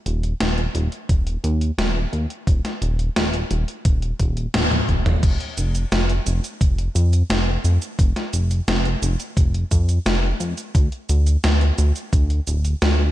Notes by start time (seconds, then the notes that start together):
0.06 D#1, closed hi-hat
0.23 closed hi-hat
0.40 D#1, snare, closed hi-hat
0.58 closed hi-hat
0.75 D#1, closed hi-hat
0.92 closed hi-hat
1.09 D#1, kick, closed hi-hat
1.27 closed hi-hat
1.44 D#2, closed hi-hat
1.61 closed hi-hat
1.78 D#1, snare, closed hi-hat
2.13 D#2, closed hi-hat
2.30 closed hi-hat
2.47 D#1, kick, closed hi-hat
2.65 snare, closed hi-hat
2.82 D#1, closed hi-hat
2.99 closed hi-hat
3.16 D#1, snare, closed hi-hat
3.34 closed hi-hat
3.51 D#1, closed hi-hat
3.68 closed hi-hat
3.85 D#1, kick, closed hi-hat
4.02 closed hi-hat
4.20 D#1, kick, closed hi-hat
4.37 closed hi-hat
4.54 D#1, snare, closed hi-hat, high tom
4.71 closed hi-hat, high tom
4.89 D#1, kick, closed hi-hat
5.06 closed hi-hat, mid tom
5.23 F1, kick, closed hi-hat, crash, shaker
5.40 closed hi-hat
5.58 F1, closed hi-hat, shaker
5.75 closed hi-hat, shaker
5.92 F1, snare, closed hi-hat, shaker
6.09 closed hi-hat
6.26 F1, closed hi-hat, shaker
6.44 closed hi-hat, shaker
6.61 F1, kick, closed hi-hat, shaker
6.78 closed hi-hat
6.95 F2, closed hi-hat, shaker
7.13 closed hi-hat, shaker
7.30 F1, snare, closed hi-hat, shaker
7.64 F2, closed hi-hat, shaker
7.82 closed hi-hat, shaker
7.99 F1, kick, closed hi-hat, shaker
8.16 snare, closed hi-hat
8.33 F1, closed hi-hat, shaker
8.51 closed hi-hat, shaker
8.68 F1, snare, closed hi-hat, shaker
8.85 closed hi-hat
9.02 F1, closed hi-hat, shaker
9.20 closed hi-hat, shaker
9.37 F1, kick, closed hi-hat, shaker
9.54 closed hi-hat
9.71 F2, kick, closed hi-hat, shaker
9.89 closed hi-hat, shaker
10.06 F1, snare, closed hi-hat, shaker
10.40 F2, closed hi-hat, shaker
10.58 closed hi-hat, shaker
10.75 D2, kick, closed hi-hat, shaker
10.92 closed hi-hat
11.09 D2, closed hi-hat, shaker
11.27 closed hi-hat, shaker
11.44 D2, snare, closed hi-hat, shaker
11.61 closed hi-hat
11.78 D2, closed hi-hat, shaker
11.96 closed hi-hat, shaker
12.13 D2, kick, closed hi-hat, shaker
12.30 closed hi-hat
12.47 D1, closed hi-hat, shaker
12.65 closed hi-hat, shaker
12.82 D2, snare, closed hi-hat, shaker